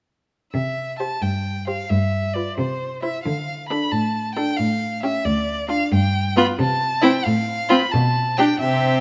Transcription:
0.53 cello C3, violin E5
0.99 viola G4, violin C5 A5
1.22 cello G2, violin G5
1.67 viola G4, violin C5 F5
1.90 cello G2, violin E5
2.34 viola F4, violin B4 D5
2.57 cello C3, violin C5
3.03 viola E4, violin C5 E5
3.24 cello D3, violin F5
3.69 viola D4, violin A4 B5
3.92 cello A2, violin A5
4.35 viola D4, violin A4 G5
4.57 cello A2, violin F5
5.03 viola C#4, violin G4 E5
5.25 cello D2, violin D5
5.69 viola D4, violin F4 F5
5.92 cello G2, violin G5
6.36 viola B3, violin F4 B5
6.59 cello C3, violin A5
7.02 viola C4, violin E4 G5
7.25 cello A2, violin F5
7.69 viola C4, violin F4 B5
7.92 cello B2, violin A5
8.37 viola D4, violin G4 G5
8.60 cello C3, viola C4, violin G4 E5

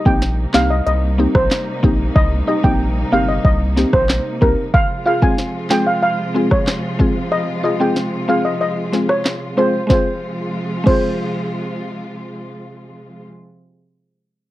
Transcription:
Already playing: string section C3 G3 A#3 D#4
0.05 sub bass A#1, synth pluck A#3 C4 D#4 G4, steel pan G5, kick
0.22 snare, closed hi-hat
0.54 sub bass C2, synth pluck A#3 C4 D#4 G4, steel pan F5, snare, clap
0.71 steel pan D#5
0.87 sub bass C2, steel pan D#5, closed hi-hat
1.18 synth pluck A#3 C4 D#4 G4
1.35 sub bass A#1, steel pan C5, kick, cross-stick
1.51 snare, clap, closed hi-hat
1.83 sub bass A#1, synth pluck A#3 C4 D#4 G4, kick
2.16 sub bass C2, steel pan D#5, kick
2.47 synth pluck D#4 G4, steel pan D#5
2.63 sub bass A#1, synth pluck A#3 C4 D#4 G4, steel pan G5, kick
3.12 sub bass G1, synth pluck A#3 C4 D#4 G4, steel pan F5
3.28 steel pan D#5
3.45 sub bass C2, steel pan D#5, kick
3.76 synth pluck A#3 C4 D#4 G4, snare
3.93 sub bass A#1, steel pan C5, kick, cross-stick
4.09 snare, clap
4.41 sub bass C2, synth pluck A#3 C4 D#4 G4, steel pan A#4, kick
4.74 string section C3 F3 G#3 F4, steel pan F5, kick
5.05 synth pluck F4 G#4, steel pan F5
5.21 synth pluck G#3 C4 F4 G#4, steel pan G#5, kick
5.38 snare
5.70 synth pluck G#3 C4 F4 G#4, steel pan G5, snare, clap
5.87 steel pan F5
6.03 steel pan F5
6.34 synth pluck G#3 C4 F4 G#4
6.51 steel pan C#5, kick, cross-stick
6.67 snare, clap
6.99 synth pluck G#3 C4 F4 G#4, kick
7.32 steel pan D#5
7.63 synth pluck F4 G#4, steel pan D#5
7.80 synth pluck G#3 C4 F4 G#4, steel pan G5
7.96 snare
8.28 synth pluck G#3 C4 F4 G#4, steel pan F5
8.45 steel pan D#5
8.61 steel pan D#5
8.92 synth pluck G#3 C4 F4 G#4, snare
9.09 steel pan C#5, cross-stick
9.25 snare, clap
9.57 synth pluck G#3 C4 F4 G#4, steel pan C5
9.87 string section C3 F3 G#3 F4, synth pluck G#3 C4, steel pan C5, kick, snare
9.91 synth pluck F4 G#4
10.84 synth pluck G#3 C4, steel pan C5, kick, crash
10.88 synth pluck F4 G#4

